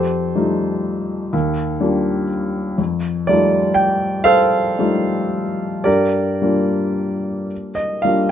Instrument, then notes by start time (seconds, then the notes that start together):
grand piano
Already playing: F2 G4 A4 C5
0.35 G3 A3 D#4 F4
1.33 D#2
1.81 G3 A#3 D4 F4
2.78 F2
3.27 G3 A3 D#4 F4 D5
3.74 G5
4.24 A4 C5 F5
4.79 G3 A3 D#4 F4
5.84 G2 G4 A#4 D5
6.42 G3 A#3 D4 F4
7.75 D#5
8.02 G3 A#3 D4 F4 F5